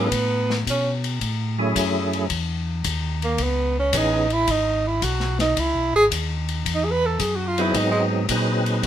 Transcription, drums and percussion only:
0.12 kick soft
0.12 ride medium
0.50 snare soft
0.67 kick soft
0.67 hi-hat pedal medium
0.67 ride medium
1.04 ride soft
1.21 kick soft
1.21 ride medium
1.76 kick soft
1.76 hi-hat pedal medium
1.76 ride medium
2.13 ride soft
2.30 kick soft
2.30 ride medium
2.84 kick soft
2.84 hi-hat pedal medium
2.84 ride medium
3.22 ride soft
3.38 kick soft
3.38 ride medium
3.93 kick soft
3.93 hi-hat pedal medium
3.93 ride medium
4.30 ride soft
4.47 kick soft
4.47 ride medium
5.02 kick soft
5.02 hi-hat pedal medium
5.02 ride medium
5.20 snare soft
5.39 snare soft
5.39 ride soft
5.57 kick soft
5.57 ride medium
6.11 kick soft
6.11 hi-hat pedal medium
6.11 ride medium
6.49 ride soft
6.66 kick soft
6.66 ride medium
7.19 kick soft
7.19 hi-hat pedal medium
7.19 ride medium
7.58 ride soft
7.74 kick soft
7.74 ride medium
8.29 kick soft
8.29 hi-hat pedal medium
8.29 ride medium
8.66 ride soft
8.83 kick soft
8.83 ride medium

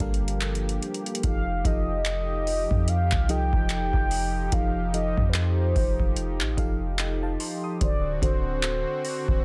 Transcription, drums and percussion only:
0.00 kick loud
0.00 closed hi-hat medium
0.14 closed hi-hat medium
0.28 closed hi-hat medium
0.41 clap loud
0.41 closed hi-hat medium
0.55 closed hi-hat medium
0.69 closed hi-hat medium
0.83 closed hi-hat soft
0.83 open hi-hat medium
0.94 closed hi-hat medium
1.06 closed hi-hat medium
1.15 closed hi-hat medium
1.23 kick loud
1.23 closed hi-hat medium
1.65 kick medium
1.65 closed hi-hat medium
2.05 clap loud
2.05 closed hi-hat medium
2.47 open hi-hat medium
2.71 kick medium
2.88 closed hi-hat medium
3.12 kick loud
3.12 clap medium
3.29 closed hi-hat medium
3.53 kick loud
3.70 clap loud
3.70 closed hi-hat medium
3.93 kick loud
4.11 open hi-hat medium
4.52 kick loud
4.52 closed hi-hat medium
4.94 closed hi-hat medium
5.18 kick medium
5.34 clap loud
5.34 closed hi-hat medium
5.76 kick loud
5.76 open hi-hat medium
6.00 kick medium
6.16 closed hi-hat medium
6.41 clap medium
6.57 kick loud
6.57 closed hi-hat medium
6.99 clap loud
6.99 closed hi-hat medium
7.40 open hi-hat medium
7.81 kick loud
7.81 closed hi-hat medium
8.22 kick loud
8.22 closed hi-hat medium
8.63 clap loud
8.63 closed hi-hat medium
9.05 open hi-hat medium
9.28 kick medium

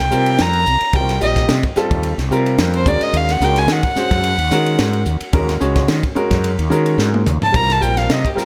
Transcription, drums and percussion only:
0.11 hi-hat pedal medium
0.26 ride medium
0.38 snare loud
0.38 ride medium
0.53 ride medium
0.66 hi-hat pedal medium
0.81 ride medium
0.93 kick loud
0.93 ride medium
1.09 snare soft
1.09 ride medium
1.21 hi-hat pedal medium
1.36 kick medium
1.36 snare soft
1.36 ride medium
1.49 snare loud
1.49 ride medium
1.63 kick medium
1.63 ride medium
1.76 snare soft
1.76 hi-hat pedal medium
1.91 kick medium
1.91 ride medium
2.03 ride medium
2.19 snare soft
2.19 ride medium
2.32 hi-hat pedal medium
2.46 ride medium
2.58 snare loud
2.58 ride medium
2.73 ride medium
2.86 kick medium
2.86 hi-hat pedal medium
3.01 ride medium
3.14 ride medium
3.29 snare soft
3.29 ride medium
3.41 hi-hat pedal medium
3.56 snare soft
3.56 ride medium
3.68 snare loud
3.68 ride medium
3.83 kick medium
3.83 ride medium
3.96 snare soft
3.96 hi-hat pedal medium
4.11 kick medium
4.11 snare soft
4.11 ride medium
4.24 ride medium
4.38 ride medium
4.51 hi-hat pedal medium
4.66 ride medium
4.79 snare loud
4.79 ride medium
4.93 ride medium
5.05 hi-hat pedal medium
5.21 ride medium
5.33 kick loud
5.33 ride medium
5.49 snare soft
5.49 ride medium
5.61 hi-hat pedal medium
5.76 kick medium
5.76 snare soft
5.76 ride medium
5.88 snare loud
5.88 ride medium
6.03 kick medium
6.03 ride medium
6.16 hi-hat pedal medium
6.31 kick medium
6.31 snare soft
6.31 ride medium
6.44 ride medium
6.59 ride medium
6.71 hi-hat pedal medium
6.86 ride medium
6.99 snare medium
7.14 high tom medium
7.26 hi-hat pedal medium
7.26 mid tom medium
7.42 floor tom medium
7.54 kick loud
7.54 ride medium
7.70 snare soft
7.70 ride medium
7.82 hi-hat pedal medium
7.97 snare soft
7.97 ride medium
8.10 snare loud
8.10 ride medium
8.25 kick medium
8.25 ride medium
8.38 snare soft
8.38 hi-hat pedal medium

